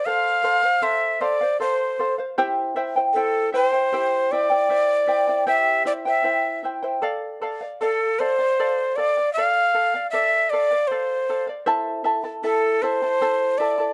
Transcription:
0.05 0.42 A4 medium
0.05 0.43 C5 medium
0.05 0.85 F5 medium
0.05 0.43 F5 medium
0.44 0.63 A4 soft
0.44 0.63 C5 medium
0.44 0.62 F5 medium
0.63 0.81 C5 soft
0.63 0.82 F5 medium
0.82 1.19 A4 medium
0.82 1.20 C5 medium
0.82 1.23 E5 medium
1.21 1.40 A4 medium
1.21 1.40 C5 medium
1.21 1.60 D5 medium
1.21 1.40 F5 medium
1.41 1.59 C5 soft
1.41 1.60 F5 soft
1.60 1.98 A4 medium
1.60 1.98 C5 medium
1.60 2.15 C5 medium
1.60 1.99 F5 soft
2.00 2.18 A4 soft
2.00 2.18 C5 medium
2.00 2.17 F5 medium
2.18 2.37 C5 soft
2.18 2.37 F5 soft
2.38 2.75 E4 medium
2.38 2.76 G4 medium
2.38 2.75 C5 medium
2.38 2.75 E5 medium
2.38 2.76 G5 medium
2.76 2.95 E4 medium
2.76 2.96 C5 medium
2.76 2.95 E5 medium
2.76 2.95 G5 medium
2.96 3.15 E4 soft
2.96 3.15 C5 soft
2.96 3.15 G5 soft
3.13 3.52 E4 medium
3.13 3.50 A4 medium
3.13 3.53 C5 medium
3.13 3.51 E5 soft
3.13 3.53 G5 medium
3.53 3.73 E4 medium
3.53 3.65 B4 medium
3.53 3.73 C5 medium
3.53 3.72 E5 medium
3.53 3.71 G5 medium
3.65 4.33 C5 medium
3.73 3.92 E4 soft
3.73 3.93 C5 soft
3.73 3.92 G5 soft
3.93 4.31 E4 medium
3.93 4.31 G4 medium
3.93 4.32 C5 medium
3.93 4.31 E5 medium
3.93 4.32 G5 medium
4.32 4.50 E4 soft
4.32 4.50 C5 medium
4.32 5.47 D5 medium
4.32 4.51 E5 soft
4.32 4.49 G5 soft
4.50 4.69 E4 soft
4.50 4.69 C5 soft
4.50 4.69 G5 soft
4.70 5.06 E4 soft
4.70 5.07 C5 medium
4.70 5.06 E5 medium
4.70 5.07 G5 medium
5.07 5.27 E4 soft
5.07 5.28 C5 medium
5.07 5.27 E5 soft
5.07 5.26 G5 medium
5.28 5.46 E4 soft
5.28 5.46 C5 soft
5.28 5.46 G5 soft
5.47 5.84 E4 medium
5.47 5.86 G4 medium
5.47 5.84 C5 medium
5.47 5.84 E5 medium
5.47 5.83 E5 medium
5.47 5.86 G5 medium
5.85 6.05 E4 medium
5.85 6.05 C5 medium
5.85 5.93 D5 medium
5.85 6.05 E5 medium
5.85 6.04 G5 medium
6.05 6.23 E4 soft
6.05 6.23 C5 soft
6.05 6.61 E5 medium
6.05 6.24 G5 soft
6.24 6.63 E4 medium
6.24 6.63 C5 soft
6.24 6.62 E5 soft
6.24 6.63 G5 soft
6.63 6.83 E4 soft
6.63 6.82 C5 medium
6.63 6.83 E5 soft
6.63 6.81 G5 soft
6.83 7.01 E4 soft
6.83 7.02 C5 soft
6.83 7.02 G5 soft
7.02 7.40 A4 medium
7.02 7.41 D5 medium
7.02 7.41 F5 medium
7.42 7.60 A4 medium
7.42 7.61 D5 medium
7.42 7.60 F5 medium
7.61 7.81 D5 soft
7.61 7.80 F5 soft
7.81 8.19 A4 medium
7.81 8.21 A4 medium
7.81 8.19 D5 medium
7.81 8.20 F5 medium
8.19 8.38 A4 medium
8.19 8.97 C5 medium
8.19 8.38 D5 medium
8.19 8.38 F5 medium
8.39 8.58 D5 soft
8.39 8.58 F5 soft
8.59 8.96 A4 medium
8.59 8.97 D5 medium
8.59 8.97 F5 medium
8.96 9.16 A4 soft
8.96 9.33 D5 medium
8.96 9.16 D5 medium
8.96 9.16 F5 soft
9.17 9.36 D5 soft
9.17 9.35 F5 soft
9.33 10.07 F5 medium
9.37 9.73 A4 medium
9.37 9.74 D5 medium
9.37 9.75 F5 medium
9.74 9.93 A4 soft
9.74 9.94 D5 soft
9.74 9.93 F5 soft
9.94 10.13 D5 soft
9.94 10.13 F5 soft
10.11 10.51 A4 medium
10.11 10.52 D5 medium
10.11 10.51 E5 medium
10.50 10.71 A4 medium
10.50 10.89 D5 medium
10.50 10.71 D5 medium
10.54 10.70 F5 medium
10.71 10.90 D5 soft
10.71 10.90 F5 soft
10.88 11.28 A4 soft
10.88 11.46 C5 medium
10.88 11.29 D5 medium
10.92 11.29 F5 medium
11.29 11.48 A4 soft
11.29 11.48 D5 soft
11.29 11.46 F5 soft
11.47 11.67 D5 soft
11.47 11.66 F5 soft
11.66 12.03 E4 medium
11.66 12.04 A4 medium
11.66 12.05 C5 medium
11.66 12.03 E5 medium
11.66 12.04 A5 medium
12.04 12.24 E4 medium
12.04 12.23 A4 medium
12.04 12.24 E5 medium
12.04 12.23 A5 medium
12.24 12.42 E4 soft
12.24 12.43 A4 soft
12.24 12.43 A5 medium
12.43 12.82 E4 medium
12.43 12.84 A4 medium
12.43 12.82 A4 medium
12.43 12.81 E5 soft
12.43 12.83 A5 medium
12.82 13.02 E4 medium
12.82 13.02 A4 medium
12.82 13.59 C5 medium
12.82 13.02 E5 medium
12.82 13.01 A5 medium
13.02 13.21 E4 soft
13.02 13.21 A4 soft
13.02 13.21 A5 soft
13.21 13.59 E4 medium
13.21 13.59 A4 medium
13.21 13.60 C5 medium
13.21 13.59 E5 medium
13.21 13.60 A5 medium
13.58 13.78 E4 soft
13.58 13.78 A4 medium
13.58 13.93 D5 medium
13.58 13.79 E5 medium
13.58 13.77 A5 soft
13.78 13.93 E4 soft
13.78 13.93 A4 soft
13.78 13.93 A5 soft

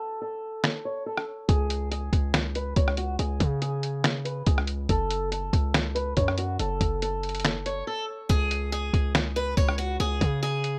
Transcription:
0.00 0.19 A4 loud
0.22 0.61 A4 medium
0.64 finger snap medium
0.64 snare loud
0.85 1.02 C#5 medium
1.06 1.24 A4 medium
1.18 cross-stick loud
1.48 2.10 C#2 loud
1.48 1.89 G#4 loud
1.48 kick loud
1.48 closed hi-hat medium
1.70 closed hi-hat medium
1.91 2.31 G#4 medium
1.91 closed hi-hat medium
2.13 2.74 C#2 loud
2.13 kick loud
2.13 closed hi-hat medium
2.34 finger snap medium
2.34 cross-stick medium
2.34 snare loud
2.34 closed hi-hat medium
2.55 2.73 B4 medium
2.55 closed hi-hat medium
2.76 3.17 C#2 loud
2.76 2.94 C#5 medium
2.76 kick loud
2.76 closed hi-hat medium
2.88 cross-stick loud
2.97 3.15 F#4 medium
2.97 closed hi-hat medium
3.19 3.40 C#2 loud
3.19 3.59 G#4 medium
3.19 closed hi-hat medium
3.40 4.43 C#3 loud
3.40 kick loud
3.40 closed hi-hat medium
3.62 4.02 G#4 medium
3.62 closed hi-hat medium
3.83 closed hi-hat medium
4.04 finger snap medium
4.04 cross-stick medium
4.04 snare loud
4.04 closed hi-hat medium
4.25 4.42 B4 medium
4.25 closed hi-hat medium
4.46 4.88 C#2 loud
4.46 4.64 G#4 medium
4.46 kick loud
4.46 closed hi-hat medium
4.58 cross-stick loud
4.67 closed hi-hat medium
4.89 5.51 F#1 loud
4.89 5.30 A4 loud
4.89 kick loud
4.89 closed hi-hat medium
5.11 closed hi-hat medium
5.32 5.72 A4 medium
5.32 closed hi-hat medium
5.53 6.14 C#2 loud
5.53 kick loud
5.53 closed hi-hat medium
5.74 finger snap medium
5.74 cross-stick medium
5.74 snare loud
5.74 closed hi-hat medium
5.95 6.13 B4 medium
5.95 closed hi-hat medium
6.17 6.58 F#2 loud
6.17 6.34 C#5 medium
6.17 kick loud
6.17 closed hi-hat medium
6.28 cross-stick loud
6.38 6.55 F#4 medium
6.38 closed hi-hat medium
6.59 6.80 F#1 loud
6.59 6.99 A4 medium
6.59 closed hi-hat medium
6.81 7.83 F#1 loud
6.81 kick loud
6.81 closed hi-hat medium
7.02 7.42 A4 medium
7.02 closed hi-hat medium
7.23 closed hi-hat soft
7.29 closed hi-hat medium
7.35 closed hi-hat medium
7.40 closed hi-hat medium
7.45 finger snap medium
7.45 snare loud
7.45 closed hi-hat medium
7.66 7.83 C#5 medium
7.66 closed hi-hat medium
7.87 8.04 A4 medium
8.29 8.91 C#2 loud
8.29 8.69 G#4 loud
8.29 kick loud
8.29 closed hi-hat medium
8.51 closed hi-hat medium
8.72 9.12 G#4 medium
8.72 closed hi-hat medium
8.94 9.55 C#2 loud
8.94 kick loud
8.94 closed hi-hat medium
9.15 finger snap medium
9.15 cross-stick medium
9.15 snare loud
9.15 closed hi-hat medium
9.36 9.53 B4 medium
9.36 closed hi-hat medium
9.57 9.98 C#2 loud
9.57 9.75 C#5 medium
9.57 kick loud
9.57 closed hi-hat medium
9.69 cross-stick loud
9.78 9.96 F#4 medium
9.78 closed hi-hat medium
10.00 10.20 C#2 loud
10.00 10.40 G#4 loud
10.00 closed hi-hat medium
10.21 10.79 C#3 loud
10.21 kick loud
10.21 closed hi-hat medium
10.43 10.79 G#4 medium
10.43 closed hi-hat medium
10.64 closed hi-hat medium

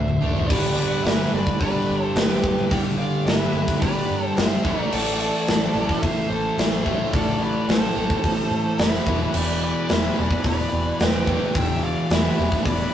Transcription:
0.00 0.17 D2 medium
0.00 0.19 D3 medium
0.00 0.19 A3 medium
0.00 0.46 C5 medium
0.00 0.47 E5 loud
0.08 mid tom medium
0.21 0.44 F#1 medium
0.21 0.47 D3 medium
0.21 0.48 A3 medium
0.21 0.48 D4 loud
0.21 floor tom medium
0.37 floor tom medium
0.47 0.87 G1 loud
0.47 1.58 G2 medium
0.47 1.59 D3 loud
0.47 0.75 B4 medium
0.47 0.75 D5 loud
0.47 kick loud
0.47 crash loud
0.51 1.60 G3 loud
0.77 1.03 B4 medium
0.77 1.04 D5 medium
1.04 1.23 G1 medium
1.04 1.31 B4 medium
1.04 1.33 E5 loud
1.04 snare loud
1.04 open hi-hat medium
1.32 1.51 G1 medium
1.32 1.60 B4 medium
1.32 1.59 D5 medium
1.47 kick medium
1.59 1.79 G1 loud
1.59 2.68 G2 medium
1.59 2.70 D3 medium
1.59 2.71 G3 medium
1.59 2.01 B4 medium
1.59 2.06 D5 loud
1.59 kick medium
1.59 open hi-hat medium
1.89 2.07 G1 medium
2.01 2.12 A4 medium
2.06 2.17 C5 loud
2.15 2.52 G1 loud
2.15 2.67 G4 medium
2.15 2.73 B4 loud
2.15 snare loud
2.15 open hi-hat medium
2.44 kick medium
2.69 3.08 G1 loud
2.69 3.79 G2 loud
2.69 3.81 D3 loud
2.69 3.81 G3 medium
2.69 2.79 D5 medium
2.69 2.79 G5 loud
2.69 kick loud
2.69 open hi-hat medium
2.98 3.25 D5 medium
2.98 3.26 F5 medium
3.26 3.45 G1 medium
3.26 3.78 B4 medium
3.26 3.83 E5 loud
3.26 snare loud
3.26 open hi-hat medium
3.54 3.73 G1 medium
3.68 kick loud
3.68 snare soft
3.80 4.01 G1 loud
3.80 4.62 G2 medium
3.80 4.62 D3 medium
3.80 4.21 B4 medium
3.80 4.27 D5 medium
3.80 kick medium
3.80 open hi-hat medium
3.84 4.64 G3 loud
4.10 4.28 G2 medium
4.21 4.32 A4 medium
4.27 4.37 C5 medium
4.36 4.56 G1 medium
4.36 4.77 C5 medium
4.36 4.82 E5 loud
4.36 snare loud
4.36 open hi-hat medium
4.63 4.84 A1 medium
4.63 5.78 A2 medium
4.63 5.76 E3 medium
4.63 kick loud
4.67 5.74 A3 loud
4.77 4.88 A#4 medium
4.82 4.94 D5 loud
4.91 5.30 A1 loud
4.91 5.17 A4 medium
4.91 5.18 D5 loud
4.91 crash loud
5.19 6.00 A4 medium
5.19 6.02 D5 medium
5.47 5.67 A1 medium
5.47 snare loud
5.47 open hi-hat medium
5.74 5.94 A1 medium
5.74 6.83 A2 medium
5.74 6.86 E3 medium
5.74 6.84 A3 medium
5.89 kick medium
5.89 snare soft
6.02 6.22 A1 loud
6.02 6.29 C5 medium
6.02 6.28 E5 medium
6.02 kick loud
6.02 open hi-hat medium
6.30 6.49 A1 medium
6.30 6.57 A4 medium
6.30 6.59 C5 loud
6.57 6.95 A1 medium
6.57 7.09 C5 medium
6.57 7.13 E5 loud
6.57 snare loud
6.57 open hi-hat medium
6.84 7.94 A2 medium
6.84 7.96 E3 loud
6.84 7.93 A3 loud
6.84 kick medium
7.13 7.51 A1 medium
7.13 7.39 A4 medium
7.13 7.39 D5 loud
7.13 kick loud
7.13 open hi-hat medium
7.42 7.67 B4 medium
7.42 7.71 D5 medium
7.68 7.87 A1 medium
7.68 8.75 A4 medium
7.68 8.84 C5 medium
7.68 snare loud
7.68 open hi-hat medium
7.94 8.15 A1 medium
7.94 9.08 E3 medium
7.94 9.04 A3 medium
7.99 9.06 A2 medium
8.10 kick loud
8.24 8.43 A1 loud
8.24 kick medium
8.24 open hi-hat medium
8.51 8.70 A2 medium
8.78 8.97 F1 medium
8.78 9.30 B4 medium
8.78 9.37 E5 medium
8.78 snare loud
8.78 open hi-hat medium
8.94 snare soft
9.05 9.25 E1 medium
9.05 10.19 E2 medium
9.05 10.16 B2 medium
9.05 10.16 E3 loud
9.05 kick loud
9.33 9.71 E1 loud
9.33 9.60 B4 medium
9.33 crash loud
9.38 9.62 D5 loud
9.61 9.87 B4 medium
9.61 9.91 D5 medium
9.88 10.08 E1 medium
9.88 10.14 B4 medium
9.88 snare loud
9.88 open hi-hat medium
9.93 10.20 E5 loud
10.16 10.36 E1 medium
10.16 11.25 E2 medium
10.16 11.26 B2 medium
10.16 11.30 E3 medium
10.16 10.43 B4 medium
10.21 10.46 D5 medium
10.31 kick medium
10.44 10.63 E1 medium
10.44 10.96 B4 medium
10.44 11.03 D5 medium
10.44 kick loud
10.44 open hi-hat medium
10.72 10.90 E1 medium
11.00 11.37 E1 loud
11.00 11.52 G4 medium
11.00 11.58 B4 medium
11.00 snare loud
11.00 open hi-hat medium
11.26 12.35 E2 loud
11.26 12.36 B2 medium
11.26 kick medium
11.30 12.37 E3 loud
11.55 11.93 E1 loud
11.55 11.82 E5 medium
11.55 11.85 G5 loud
11.55 kick loud
11.55 open hi-hat medium
11.83 12.09 D5 medium
11.83 12.11 F5 medium
12.10 12.29 E1 medium
12.10 12.62 B4 medium
12.10 12.66 E5 medium
12.10 snare loud
12.10 open hi-hat medium
12.37 12.57 E1 medium
12.37 12.94 E2 medium
12.37 12.94 B2 medium
12.37 12.94 E3 medium
12.52 kick medium
12.52 snare soft
12.65 12.84 E1 loud
12.65 12.94 B4 medium
12.65 12.94 D5 medium
12.65 kick medium
12.65 open hi-hat medium

